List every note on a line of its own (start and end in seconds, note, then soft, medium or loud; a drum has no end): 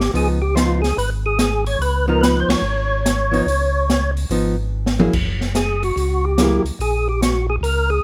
0.00 0.11 G4 medium
0.00 snare soft
0.14 0.93 C#2 medium
0.14 0.38 F3 soft
0.14 0.38 B3 soft
0.14 0.39 D#4 soft
0.14 0.28 G#4 medium
0.14 open hi-hat soft
0.42 0.55 G4 medium
0.56 0.80 F3 soft
0.56 0.80 B3 medium
0.56 0.81 D#4 medium
0.56 0.81 F4 medium
0.56 snare medium
0.56 closed hi-hat soft
0.82 0.97 G#4 medium
0.82 snare soft
0.82 open hi-hat soft
0.97 1.76 G#1 medium
0.97 1.10 B4 medium
0.97 open hi-hat soft
1.26 1.39 G#4 medium
1.39 1.64 G#4 medium
1.39 snare medium
1.39 closed hi-hat soft
1.66 1.81 C#5 medium
1.66 open hi-hat soft
1.79 2.44 C#2 medium
1.79 2.06 B4 medium
1.79 open hi-hat soft
2.08 2.61 F3 medium
2.08 2.61 B3 medium
2.08 2.61 D#4 medium
2.08 2.23 A#4 medium
2.21 2.40 B4 medium
2.21 snare medium
2.21 closed hi-hat soft
2.40 2.49 C5 medium
2.48 2.56 C#2 soft
2.48 4.11 C#5 medium
2.48 snare medium
2.48 ride medium
2.62 3.42 G#1 medium
3.06 snare medium
3.06 closed hi-hat soft
3.31 3.45 F3 medium
3.31 3.46 B3 medium
3.31 3.46 D#4 medium
3.31 open hi-hat soft
3.46 4.25 C#2 medium
3.46 open hi-hat soft
3.90 snare medium
3.90 closed hi-hat soft
4.17 open hi-hat soft
4.30 5.09 G#1 medium
4.30 4.54 F3 medium
4.30 4.55 B3 medium
4.30 4.55 D#4 medium
4.30 open hi-hat soft
4.86 snare soft
4.99 5.12 F#3 medium
4.99 5.12 A#3 medium
4.99 5.13 E4 medium
4.99 5.13 G#4 medium
4.99 mid tom medium
5.13 5.92 F#1 medium
5.13 kick medium
5.13 crash medium
5.41 snare soft
5.55 5.83 G#4 medium
5.55 snare medium
5.55 closed hi-hat soft
5.83 6.25 F#4 medium
5.83 open hi-hat soft
5.96 6.60 C#2 medium
5.96 open hi-hat soft
6.25 6.63 G4 medium
6.38 6.62 F#3 medium
6.38 6.63 A#3 medium
6.38 6.63 E4 medium
6.38 6.63 G#4 medium
6.38 snare medium
6.38 closed hi-hat soft
6.64 6.71 C#2 soft
6.64 open hi-hat soft
6.79 7.58 A#1 medium
6.79 7.08 G#4 medium
6.79 open hi-hat soft
7.09 7.21 G4 medium
7.22 7.47 F#4 medium
7.22 snare medium
7.22 closed hi-hat soft
7.50 7.56 G#4 medium
7.61 8.00 C#2 medium
7.61 7.90 A#4 medium
7.61 open hi-hat soft
7.90 8.04 G#4 medium